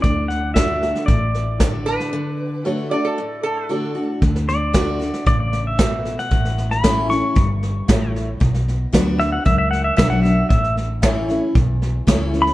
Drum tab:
HH |----p-------p---|----------------|----p-------p---|----p-------p---|
SD |o-o-o-ooo-o-o-oo|----------------|ooo-o-ooo-o-o-oo|ooooo-o-o-o-o-o-|
BD |o---o---o---o---|----------------|o---o---o---o---|o---o---o---o---|

HH |----p-------p---|----p-------p---|
SD |ooo-o-o-o-o-o-o-|ooo-o-o-o-o-o-oo|
BD |o---o---o---o---|o---o---o---o---|